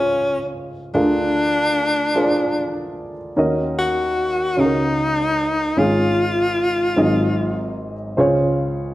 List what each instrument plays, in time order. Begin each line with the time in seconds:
Already playing: upright piano C#2 C#3 C#4 F4 G#4 C5 D5 F5, tenor saxophone C#4
0.94 upright piano D2 D3 D4 F4 G#4 A#4 F5, tenor saxophone D4
2.15 upright piano D4 F4 G#4 A#4 C5
2.23 upright piano D5
3.36 upright piano D#2 D#3 C#4 D#4 F#4 A#4 D#5
3.78 tenor saxophone F#4
4.56 upright piano C#2 C#3 C#4 F#4 G#4, tenor saxophone D#4
4.64 upright piano A#4
5.77 upright piano G#1 G#2 C#4 F4 G#4, tenor saxophone F4
6.96 upright piano G#1 G#2 F#3 C4 D#4 G#4 D#5
8.17 upright piano C#2 C#3 C#4 F4 G#4 C5 C#5